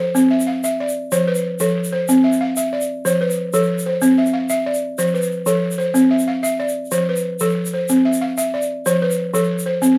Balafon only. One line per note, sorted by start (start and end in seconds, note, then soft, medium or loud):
0.00 0.15 A4 medium
0.00 0.31 C5 medium
0.15 0.47 C4 medium
0.31 0.63 E5 medium
0.47 0.96 F5 medium
0.64 0.96 E5 medium
0.80 1.28 D5 medium
1.12 1.44 F3 medium
1.12 1.60 C5 medium
1.28 1.76 B4 medium
1.60 1.93 F3 medium
1.60 2.09 A4 medium
1.92 2.25 C5 medium
2.09 2.41 C4 medium
2.24 2.56 E5 medium
2.41 2.89 F5 medium
2.57 2.89 E5 medium
2.73 3.21 D5 medium
3.05 3.38 F3 medium
3.05 3.54 C5 medium
3.21 3.70 B4 medium
3.54 3.86 F3 medium
3.54 4.02 A4 medium
3.86 4.18 C5 medium
4.02 4.34 C4 medium
4.18 4.49 E5 medium
4.33 4.82 F5 medium
4.50 4.82 E5 medium
4.66 5.15 D5 medium
4.98 5.31 F3 medium
4.98 5.47 C5 medium
5.14 5.63 B4 medium
5.46 5.79 F3 medium
5.46 5.95 A4 medium
5.78 6.11 C5 medium
5.94 6.27 C4 medium
6.11 6.42 E5 medium
6.28 6.76 F5 medium
6.43 6.76 E5 medium
6.60 7.08 D5 medium
6.92 7.24 F3 medium
6.92 7.40 C5 medium
7.09 7.57 B4 medium
7.41 7.73 F3 medium
7.41 7.89 A4 medium
7.74 8.05 C5 medium
7.90 8.22 C4 medium
8.05 8.36 E5 medium
8.21 8.70 F5 medium
8.38 8.70 E5 medium
8.54 9.02 D5 medium
8.86 9.18 F3 medium
8.86 9.34 C5 medium
9.02 9.50 B4 medium
9.34 9.66 F3 medium
9.34 9.82 A4 medium
9.66 9.98 C5 medium
9.82 9.98 C4 medium